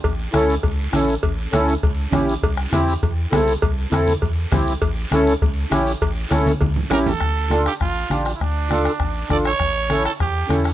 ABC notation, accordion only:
X:1
M:4/4
L:1/8
Q:1/4=201
K:Dm
V:1 name="Accordion"
z2 [^CEA] z3 [CEA] z | z2 [^CEA] z3 [CEG] z | z2 [CEG] z3 [CEA] z | z2 [CEA] z3 [CEG] z |
z2 [^CEA] z3 [CEG] z | z2 [^CEA] z3 [CEG] z | z2 [DFA] z3 [DFG] z | z2 [DFA] z3 [DFA] z |
z2 [^CEA] z3 [CEA] z |]